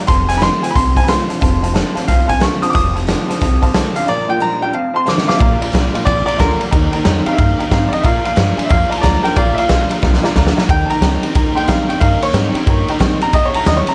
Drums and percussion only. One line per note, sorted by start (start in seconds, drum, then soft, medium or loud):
0.08 kick loud
0.08 closed hi-hat loud
0.29 snare soft
0.29 closed hi-hat medium
0.42 snare loud
0.42 closed hi-hat medium
0.64 closed hi-hat medium
0.76 kick loud
0.76 closed hi-hat medium
0.96 kick medium
0.96 closed hi-hat medium
1.08 snare loud
1.08 closed hi-hat medium
1.30 closed hi-hat medium
1.42 kick loud
1.42 closed hi-hat medium
1.64 closed hi-hat medium
1.76 snare loud
1.76 closed hi-hat medium
1.97 snare soft
1.97 closed hi-hat medium
2.08 kick loud
2.08 snare soft
2.08 closed hi-hat medium
2.29 kick medium
2.29 closed hi-hat medium
2.41 snare loud
2.41 closed hi-hat medium
2.63 closed hi-hat medium
2.75 kick loud
2.75 closed hi-hat medium
2.97 closed hi-hat medium
3.09 snare loud
3.09 closed hi-hat medium
3.31 snare soft
3.31 closed hi-hat medium
3.42 kick loud
3.42 snare soft
3.42 closed hi-hat medium
3.63 kick medium
3.63 closed hi-hat medium
3.74 snare loud
3.74 closed hi-hat medium
3.96 closed hi-hat medium
5.08 snare medium
5.18 snare medium
5.29 snare medium
5.41 kick loud
5.41 ride medium
5.62 ride medium
5.75 snare loud
5.75 ride medium
5.95 ride medium
6.07 kick loud
6.07 ride medium
6.28 ride medium
6.40 kick medium
6.40 snare loud
6.40 ride loud
6.61 ride medium
6.72 kick loud
6.72 ride medium
6.93 ride medium
7.05 snare loud
7.05 ride medium
7.26 ride medium
7.38 kick loud
7.38 ride medium
7.60 ride medium
7.71 kick medium
7.71 snare loud
7.71 ride medium
7.93 ride medium
8.05 kick loud
8.05 ride medium
8.25 ride medium
8.37 snare loud
8.37 ride medium
8.59 ride medium
8.70 kick loud
8.70 ride medium
8.92 ride medium
9.04 kick medium
9.04 snare loud
9.04 ride medium
9.25 snare soft
9.25 ride medium
9.37 kick loud
9.37 ride medium
9.58 ride medium
9.69 snare loud
9.69 ride medium
9.91 ride medium
10.03 kick loud
10.03 snare medium
10.14 snare medium
10.24 snare medium
10.36 kick medium
10.36 snare medium
10.47 snare loud
10.58 snare medium
10.69 kick loud
10.69 ride medium
10.90 ride medium
11.02 snare loud
11.02 ride medium
11.23 ride medium
11.35 kick loud
11.35 ride loud
11.57 ride medium
11.69 kick medium
11.69 snare loud
11.69 ride medium
11.90 ride medium
12.01 kick loud
12.01 ride loud
12.22 ride medium
12.34 snare loud
12.34 ride medium
12.55 ride medium
12.67 kick loud
12.67 ride medium
12.88 ride medium
13.00 kick medium
13.00 snare loud
13.00 ride medium
13.21 ride medium
13.33 kick loud
13.33 ride medium
13.54 ride medium
13.66 snare loud
13.66 ride medium
13.87 ride medium